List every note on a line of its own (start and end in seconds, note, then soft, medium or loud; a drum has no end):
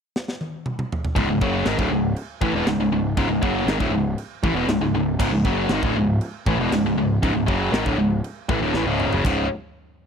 0.16 snare medium
0.28 snare medium
0.41 high tom medium
0.66 mid tom medium
0.79 mid tom medium
0.92 floor tom medium
1.05 floor tom loud
1.15 1.28 C#1 loud
1.15 1.28 C#2 medium
1.15 1.28 G#2 medium
1.15 kick loud
1.15 china medium
1.29 1.40 C#1 medium
1.29 1.41 C#2 medium
1.29 1.41 G#2 medium
1.41 1.64 F#1 medium
1.41 1.65 F#2 medium
1.41 1.66 C#3 loud
1.41 1.66 F#3 loud
1.41 kick loud
1.65 1.77 G#1 loud
1.65 1.78 G#2 medium
1.65 1.78 D#3 loud
1.65 snare loud
1.65 china medium
1.78 1.90 D1 medium
1.78 1.91 D2 medium
1.78 1.91 A2 medium
1.78 kick loud
1.91 2.15 C#1 medium
1.91 2.11 C#2 medium
1.91 2.12 G#2 medium
2.16 china medium
2.41 2.52 A1 medium
2.41 2.54 A2 loud
2.41 2.54 E3 loud
2.41 kick medium
2.53 2.65 E1 medium
2.53 2.66 E2 medium
2.53 2.67 B2 loud
2.65 2.76 C#1 medium
2.65 2.79 C#2 medium
2.65 2.79 G#2 medium
2.65 snare loud
2.65 china medium
2.77 2.90 C#1 medium
2.77 2.91 C#2 medium
2.77 2.91 G#2 medium
2.91 3.15 C#1 medium
2.91 3.12 C#2 medium
2.91 3.12 G#2 medium
3.17 3.27 C#1 medium
3.17 3.28 C#2 medium
3.17 3.29 G#2 loud
3.17 kick loud
3.17 china medium
3.28 3.41 C#1 medium
3.28 3.41 C#2 medium
3.28 3.42 G#2 medium
3.42 3.65 F#1 medium
3.42 3.66 F#2 medium
3.42 3.67 C#3 loud
3.42 3.67 F#3 loud
3.42 kick loud
3.65 3.78 G#1 loud
3.65 3.79 G#2 loud
3.65 3.79 D#3 loud
3.65 snare loud
3.65 china medium
3.79 3.88 D1 loud
3.79 3.92 D2 loud
3.79 3.92 A2 loud
3.79 kick loud
3.89 4.14 C#1 medium
3.93 4.13 C#2 medium
3.93 4.14 G#2 medium
4.18 china medium
4.43 4.53 A1 loud
4.43 4.55 A2 loud
4.43 4.56 E3 loud
4.43 kick loud
4.53 4.66 E1 loud
4.53 4.68 E2 loud
4.53 4.68 B2 loud
4.67 4.80 C#1 medium
4.67 4.80 C#2 medium
4.67 4.81 G#2 medium
4.67 snare loud
4.67 china medium
4.80 4.92 C#1 medium
4.80 4.93 C#2 medium
4.80 4.94 G#2 medium
4.93 5.17 C#1 medium
4.93 5.15 C#2 medium
4.93 5.15 G#2 medium
5.19 5.31 C#1 loud
5.19 5.31 C#2 loud
5.19 5.32 G#2 loud
5.19 kick loud
5.19 crash medium
5.19 china medium
5.32 5.44 C#1 medium
5.32 5.45 C#2 medium
5.32 5.45 G#2 medium
5.45 5.68 F#1 loud
5.45 5.69 F#2 loud
5.45 5.70 C#3 loud
5.45 5.70 F#3 loud
5.45 kick loud
5.69 5.81 G#1 medium
5.69 5.83 G#2 medium
5.69 5.83 D#3 loud
5.69 snare loud
5.69 china medium
5.83 5.94 D1 loud
5.83 5.95 D2 medium
5.83 5.95 A2 medium
5.83 kick loud
5.94 6.18 C#1 medium
5.94 6.16 C#2 medium
5.94 6.17 G#2 medium
6.21 china medium
6.46 6.57 A1 medium
6.46 6.58 A2 loud
6.46 6.59 E3 loud
6.46 kick medium
6.57 6.70 E1 medium
6.57 6.71 E2 medium
6.57 6.71 B2 loud
6.70 6.82 C#1 medium
6.70 6.85 C#2 medium
6.70 6.85 G#2 medium
6.70 snare loud
6.70 china medium
6.83 6.95 C#1 medium
6.83 6.97 C#2 medium
6.83 6.97 G#2 medium
6.95 7.19 C#1 medium
6.95 7.17 C#2 medium
6.95 7.17 G#2 medium
7.22 7.33 C#1 medium
7.22 7.33 C#2 medium
7.22 7.34 G#2 loud
7.22 kick loud
7.22 china medium
7.34 7.46 C#1 medium
7.34 7.46 C#2 medium
7.34 7.47 G#2 medium
7.47 7.71 F#1 medium
7.47 7.71 F#2 loud
7.47 7.72 C#3 loud
7.47 7.72 F#3 loud
7.47 kick loud
7.72 7.84 G#1 loud
7.72 7.84 G#2 loud
7.72 7.85 D#3 loud
7.72 snare loud
7.72 china medium
7.86 7.95 D1 loud
7.86 7.97 D2 medium
7.86 7.98 A2 medium
7.86 kick loud
7.96 8.20 C#1 medium
7.96 8.18 C#2 medium
7.96 8.19 G#2 medium
8.24 china medium
8.49 8.60 A1 medium
8.49 8.61 A2 loud
8.49 8.61 E3 loud
8.49 kick loud
8.61 8.72 D1 medium
8.61 8.73 D2 medium
8.61 8.73 A2 loud
8.73 8.83 A1 medium
8.73 8.86 A2 loud
8.73 8.86 E3 loud
8.73 snare medium
8.84 9.08 C#1 medium
8.84 9.11 C#2 medium
8.84 9.11 G#2 medium
8.88 9.11 C#3 medium
9.00 mid tom medium
9.10 9.22 F#1 medium
9.10 9.24 F#2 medium
9.10 9.24 C#3 medium
9.10 floor tom medium
9.25 9.48 C#1 loud
9.25 9.44 C#2 medium
9.25 9.45 G#2 loud
9.25 9.45 C#3 loud
9.25 kick loud
9.25 crash medium